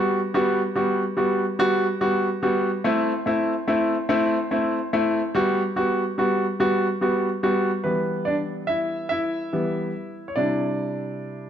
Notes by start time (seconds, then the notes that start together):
Already playing: G3 B3 F#4
0.34 G3 B3 F#4
0.76 G3 B3 F#4
1.17 G3 B3 F#4
1.59 G3 B3 F#4
2.01 G3 B3 F#4
2.43 G3 B3 F#4
2.84 A3 C4 E4
3.26 A3 C4 E4
3.68 A3 C4 E4
4.09 A3 C4 E4
4.51 A3 C4 E4
4.93 A3 C4 E4
5.34 G3 B3 F#4
5.76 G3 B3 F#4
6.18 G3 B3 F#4
6.60 G3 B3 F#4
7.01 G3 B3 F#4
7.43 G3 B3 F#4
7.84 E3 G3 B3 B4
8.25 D4 D5
8.67 E4 E5
9.09 E4 E5
9.53 E3 G3 B3
10.28 C#5
10.36 C3 G3 D4 E4 D5